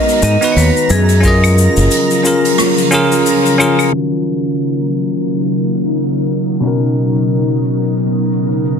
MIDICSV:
0, 0, Header, 1, 7, 480
1, 0, Start_track
1, 0, Key_signature, -6, "minor"
1, 0, Tempo, 674157
1, 884, Time_signature, 4, 2, 24, 8
1, 6263, End_track
2, 0, Start_track
2, 0, Title_t, "Synth texture"
2, 0, Program_c, 0, 99
2, 0, Note_on_c, 0, 82, 82
2, 2814, Note_off_c, 0, 82, 0
2, 6263, End_track
3, 0, Start_track
3, 0, Title_t, "Vibraphone"
3, 0, Program_c, 1, 11
3, 0, Note_on_c, 1, 75, 102
3, 162, Note_off_c, 1, 75, 0
3, 170, Note_on_c, 1, 75, 95
3, 370, Note_on_c, 1, 73, 66
3, 371, Note_off_c, 1, 75, 0
3, 407, Note_on_c, 1, 71, 93
3, 408, Note_off_c, 1, 73, 0
3, 647, Note_on_c, 1, 68, 85
3, 653, Note_off_c, 1, 71, 0
3, 891, Note_on_c, 1, 70, 93
3, 892, Note_off_c, 1, 68, 0
3, 2299, Note_off_c, 1, 70, 0
3, 6263, End_track
4, 0, Start_track
4, 0, Title_t, "Tine electric piano"
4, 0, Program_c, 2, 4
4, 0, Note_on_c, 2, 59, 86
4, 0, Note_on_c, 2, 63, 76
4, 0, Note_on_c, 2, 66, 78
4, 0, Note_on_c, 2, 70, 96
4, 256, Note_off_c, 2, 59, 0
4, 264, Note_off_c, 2, 63, 0
4, 273, Note_off_c, 2, 66, 0
4, 281, Note_off_c, 2, 70, 0
4, 293, Note_on_c, 2, 59, 85
4, 299, Note_on_c, 2, 63, 76
4, 307, Note_on_c, 2, 66, 78
4, 316, Note_on_c, 2, 71, 89
4, 627, Note_off_c, 2, 59, 0
4, 630, Note_off_c, 2, 63, 0
4, 634, Note_off_c, 2, 66, 0
4, 638, Note_off_c, 2, 71, 0
4, 858, Note_on_c, 2, 61, 92
4, 875, Note_on_c, 2, 65, 82
4, 890, Note_on_c, 2, 68, 81
4, 907, Note_on_c, 2, 75, 103
4, 1566, Note_off_c, 2, 61, 0
4, 1575, Note_off_c, 2, 65, 0
4, 1583, Note_off_c, 2, 68, 0
4, 1590, Note_on_c, 2, 61, 70
4, 1591, Note_off_c, 2, 75, 0
4, 1598, Note_on_c, 2, 65, 62
4, 1605, Note_on_c, 2, 68, 65
4, 1615, Note_on_c, 2, 70, 82
4, 2057, Note_off_c, 2, 61, 0
4, 2061, Note_off_c, 2, 65, 0
4, 2064, Note_off_c, 2, 68, 0
4, 2069, Note_off_c, 2, 70, 0
4, 2070, Note_on_c, 2, 61, 99
4, 2078, Note_on_c, 2, 65, 92
4, 2088, Note_on_c, 2, 68, 91
4, 2095, Note_on_c, 2, 70, 113
4, 2533, Note_off_c, 2, 61, 0
4, 2537, Note_off_c, 2, 65, 0
4, 2542, Note_off_c, 2, 68, 0
4, 2545, Note_off_c, 2, 70, 0
4, 2549, Note_on_c, 2, 61, 94
4, 2558, Note_on_c, 2, 65, 89
4, 2566, Note_on_c, 2, 68, 95
4, 2573, Note_on_c, 2, 70, 103
4, 2772, Note_off_c, 2, 61, 0
4, 2777, Note_off_c, 2, 65, 0
4, 2781, Note_off_c, 2, 68, 0
4, 2782, Note_on_c, 2, 51, 65
4, 2784, Note_off_c, 2, 70, 0
4, 2819, Note_on_c, 2, 66, 60
4, 2829, Note_on_c, 2, 70, 69
4, 4689, Note_off_c, 2, 51, 0
4, 4702, Note_on_c, 2, 47, 65
4, 4707, Note_off_c, 2, 66, 0
4, 4712, Note_off_c, 2, 70, 0
4, 4715, Note_on_c, 2, 61, 60
4, 4725, Note_on_c, 2, 63, 59
4, 4740, Note_on_c, 2, 66, 60
4, 4751, Note_on_c, 2, 70, 70
4, 6263, Note_off_c, 2, 47, 0
4, 6263, Note_off_c, 2, 61, 0
4, 6263, Note_off_c, 2, 63, 0
4, 6263, Note_off_c, 2, 66, 0
4, 6263, Note_off_c, 2, 70, 0
4, 6263, End_track
5, 0, Start_track
5, 0, Title_t, "Ambient pad"
5, 0, Program_c, 3, 92
5, 0, Note_on_c, 3, 51, 78
5, 0, Note_on_c, 3, 56, 77
5, 0, Note_on_c, 3, 59, 72
5, 0, Note_on_c, 3, 66, 91
5, 615, Note_off_c, 3, 51, 0
5, 616, Note_off_c, 3, 59, 0
5, 625, Note_off_c, 3, 56, 0
5, 626, Note_off_c, 3, 66, 0
5, 643, Note_on_c, 3, 49, 75
5, 644, Note_on_c, 3, 53, 72
5, 644, Note_on_c, 3, 54, 69
5, 644, Note_on_c, 3, 65, 88
5, 2782, Note_off_c, 3, 49, 0
5, 2782, Note_off_c, 3, 54, 0
5, 2782, Note_off_c, 3, 65, 0
5, 2783, Note_off_c, 3, 53, 0
5, 2801, Note_on_c, 3, 58, 66
5, 2801, Note_on_c, 3, 70, 81
5, 2802, Note_on_c, 3, 49, 76
5, 2802, Note_on_c, 3, 54, 66
5, 2804, Note_on_c, 3, 63, 65
5, 4703, Note_off_c, 3, 58, 0
5, 4703, Note_off_c, 3, 70, 0
5, 4704, Note_off_c, 3, 49, 0
5, 4717, Note_on_c, 3, 49, 76
5, 4720, Note_on_c, 3, 59, 67
5, 4722, Note_on_c, 3, 70, 86
5, 6263, Note_off_c, 3, 49, 0
5, 6263, Note_off_c, 3, 54, 0
5, 6263, Note_off_c, 3, 59, 0
5, 6263, Note_off_c, 3, 63, 0
5, 6263, Note_off_c, 3, 70, 0
5, 6263, End_track
6, 0, Start_track
6, 0, Title_t, "Fingered electric bass"
6, 0, Program_c, 4, 33
6, 160, Note_on_c, 4, 44, 94
6, 253, Note_off_c, 4, 44, 0
6, 400, Note_on_c, 4, 39, 87
6, 493, Note_off_c, 4, 39, 0
6, 640, Note_on_c, 4, 42, 93
6, 1184, Note_off_c, 4, 42, 0
6, 1260, Note_on_c, 4, 30, 88
6, 1327, Note_off_c, 4, 30, 0
6, 6263, End_track
7, 0, Start_track
7, 0, Title_t, "Drums"
7, 58, Note_on_c, 9, 46, 57
7, 62, Note_on_c, 9, 82, 42
7, 129, Note_off_c, 9, 46, 0
7, 133, Note_off_c, 9, 82, 0
7, 160, Note_on_c, 9, 82, 85
7, 232, Note_off_c, 9, 82, 0
7, 299, Note_on_c, 9, 46, 51
7, 301, Note_on_c, 9, 82, 50
7, 370, Note_off_c, 9, 46, 0
7, 372, Note_off_c, 9, 82, 0
7, 401, Note_on_c, 9, 46, 75
7, 411, Note_on_c, 9, 82, 54
7, 472, Note_off_c, 9, 46, 0
7, 482, Note_off_c, 9, 82, 0
7, 546, Note_on_c, 9, 82, 40
7, 617, Note_off_c, 9, 82, 0
7, 640, Note_on_c, 9, 82, 75
7, 712, Note_off_c, 9, 82, 0
7, 772, Note_on_c, 9, 46, 47
7, 777, Note_on_c, 9, 82, 46
7, 843, Note_off_c, 9, 46, 0
7, 849, Note_off_c, 9, 82, 0
7, 879, Note_on_c, 9, 46, 71
7, 880, Note_on_c, 9, 82, 60
7, 882, Note_on_c, 9, 36, 110
7, 950, Note_off_c, 9, 46, 0
7, 952, Note_off_c, 9, 82, 0
7, 953, Note_off_c, 9, 36, 0
7, 1022, Note_on_c, 9, 46, 51
7, 1023, Note_on_c, 9, 75, 62
7, 1027, Note_on_c, 9, 82, 49
7, 1093, Note_off_c, 9, 46, 0
7, 1094, Note_off_c, 9, 75, 0
7, 1098, Note_off_c, 9, 82, 0
7, 1126, Note_on_c, 9, 82, 79
7, 1197, Note_off_c, 9, 82, 0
7, 1257, Note_on_c, 9, 82, 48
7, 1261, Note_on_c, 9, 46, 45
7, 1328, Note_off_c, 9, 82, 0
7, 1332, Note_off_c, 9, 46, 0
7, 1360, Note_on_c, 9, 82, 60
7, 1361, Note_on_c, 9, 46, 78
7, 1431, Note_off_c, 9, 82, 0
7, 1433, Note_off_c, 9, 46, 0
7, 1500, Note_on_c, 9, 82, 41
7, 1501, Note_on_c, 9, 46, 50
7, 1571, Note_off_c, 9, 82, 0
7, 1572, Note_off_c, 9, 46, 0
7, 1604, Note_on_c, 9, 82, 84
7, 1675, Note_off_c, 9, 82, 0
7, 1744, Note_on_c, 9, 46, 65
7, 1745, Note_on_c, 9, 82, 48
7, 1815, Note_off_c, 9, 46, 0
7, 1817, Note_off_c, 9, 82, 0
7, 1835, Note_on_c, 9, 46, 79
7, 1839, Note_on_c, 9, 37, 76
7, 1846, Note_on_c, 9, 82, 60
7, 1906, Note_off_c, 9, 46, 0
7, 1911, Note_off_c, 9, 37, 0
7, 1917, Note_off_c, 9, 82, 0
7, 1979, Note_on_c, 9, 46, 56
7, 1979, Note_on_c, 9, 82, 45
7, 2050, Note_off_c, 9, 46, 0
7, 2050, Note_off_c, 9, 82, 0
7, 2078, Note_on_c, 9, 82, 75
7, 2149, Note_off_c, 9, 82, 0
7, 2219, Note_on_c, 9, 46, 54
7, 2221, Note_on_c, 9, 82, 58
7, 2290, Note_off_c, 9, 46, 0
7, 2292, Note_off_c, 9, 82, 0
7, 2318, Note_on_c, 9, 46, 75
7, 2323, Note_on_c, 9, 82, 62
7, 2389, Note_off_c, 9, 46, 0
7, 2394, Note_off_c, 9, 82, 0
7, 2463, Note_on_c, 9, 46, 50
7, 2463, Note_on_c, 9, 82, 39
7, 2534, Note_off_c, 9, 82, 0
7, 2535, Note_off_c, 9, 46, 0
7, 2562, Note_on_c, 9, 75, 63
7, 2566, Note_on_c, 9, 82, 97
7, 2633, Note_off_c, 9, 75, 0
7, 2637, Note_off_c, 9, 82, 0
7, 2697, Note_on_c, 9, 75, 64
7, 2701, Note_on_c, 9, 82, 48
7, 2704, Note_on_c, 9, 46, 49
7, 2768, Note_off_c, 9, 75, 0
7, 2772, Note_off_c, 9, 82, 0
7, 2775, Note_off_c, 9, 46, 0
7, 3189, Note_on_c, 9, 82, 48
7, 3260, Note_off_c, 9, 82, 0
7, 3525, Note_on_c, 9, 82, 73
7, 3596, Note_off_c, 9, 82, 0
7, 3660, Note_on_c, 9, 82, 53
7, 3731, Note_off_c, 9, 82, 0
7, 3765, Note_on_c, 9, 82, 41
7, 3836, Note_off_c, 9, 82, 0
7, 4003, Note_on_c, 9, 82, 72
7, 4074, Note_off_c, 9, 82, 0
7, 4148, Note_on_c, 9, 82, 58
7, 4219, Note_off_c, 9, 82, 0
7, 4244, Note_on_c, 9, 82, 44
7, 4315, Note_off_c, 9, 82, 0
7, 4488, Note_on_c, 9, 82, 73
7, 4559, Note_off_c, 9, 82, 0
7, 4627, Note_on_c, 9, 82, 52
7, 4699, Note_off_c, 9, 82, 0
7, 4725, Note_on_c, 9, 82, 38
7, 4797, Note_off_c, 9, 82, 0
7, 4965, Note_on_c, 9, 82, 66
7, 5036, Note_off_c, 9, 82, 0
7, 5107, Note_on_c, 9, 82, 50
7, 5178, Note_off_c, 9, 82, 0
7, 5206, Note_on_c, 9, 82, 42
7, 5277, Note_off_c, 9, 82, 0
7, 5443, Note_on_c, 9, 82, 75
7, 5514, Note_off_c, 9, 82, 0
7, 5585, Note_on_c, 9, 82, 49
7, 5656, Note_off_c, 9, 82, 0
7, 5685, Note_on_c, 9, 82, 43
7, 5756, Note_off_c, 9, 82, 0
7, 5925, Note_on_c, 9, 82, 68
7, 5996, Note_off_c, 9, 82, 0
7, 6066, Note_on_c, 9, 82, 50
7, 6137, Note_off_c, 9, 82, 0
7, 6164, Note_on_c, 9, 82, 45
7, 6235, Note_off_c, 9, 82, 0
7, 6263, End_track
0, 0, End_of_file